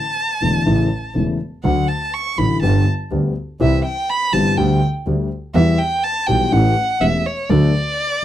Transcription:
Already playing: violin A5
0.42 double bass E1, grand piano E1 E2 D3 E3 A3 E4
0.66 double bass A1, grand piano A1 A2 C#3 E3 A3 E4
1.15 grand piano E1 E2 C#3 E3 A3 E4, double bass E1
1.64 double bass D2, grand piano D2 D3 F#3 A3 F#4, violin F#5
1.88 violin A5
2.14 violin C#6
2.38 double bass A1, grand piano A1 A2 D3 F#3 A3 F#4, violin B5
2.62 double bass G1, grand piano G1 G2 D3 G3 B3 G4, violin A5
3.11 double bass D2, grand piano D2 D3 G3 B3 G4
3.60 double bass C2, grand piano C2 C3 E3 G3 C4 G4, violin E5
3.85 violin G5
4.10 violin B5
4.33 double bass G1, grand piano G1 G2 E3 G3 C4 G4, violin A5
4.57 double bass D2, grand piano D2 D3 G3 A3 G4, violin G5
5.06 double bass D2, grand piano D2 D3 G3 A3 G4
5.55 double bass E2, grand piano E2 E3 G3 B3 G4, violin E5
5.78 violin G5
6.03 violin A5
6.27 double bass B1, grand piano B1 B2 E3 G3 B3 G4, violin G5
6.52 grand piano A1 A2 E3 A3 C#4 G4, double bass A1, violin F#5
7.01 grand piano E1 E2 E3 A3 C#4 G4, double bass E1, violin E5
7.26 violin C#5
7.50 double bass D2, grand piano D2 D3 F#3 A3 D4 A4, violin D5

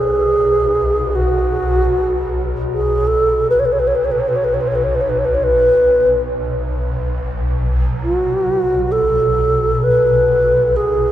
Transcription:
Already playing: synth drone B1, alto flute G#4
1.15 alto flute F#4
2.73 alto flute G#4
3.07 alto flute A4
3.50 alto flute B4
3.59 alto flute C#5
3.65 alto flute B4
3.72 alto flute C#5
3.79 alto flute B4
3.87 alto flute C#5
3.95 alto flute B4
4.05 alto flute C#5
4.11 alto flute B4
4.20 alto flute C#5
4.28 alto flute B4
4.36 alto flute C#5
4.44 alto flute B4
4.54 alto flute C#5
4.61 alto flute B4
4.68 alto flute C#5
4.75 alto flute B4
4.84 alto flute C#5
4.95 alto flute B4
5.01 alto flute C#5
5.09 alto flute B4
5.19 alto flute C#5
5.25 alto flute B4
5.35 alto flute C#5
5.44 alto flute B4
8.04 alto flute F#4
8.92 alto flute A4
9.84 alto flute B4
10.76 alto flute G#4

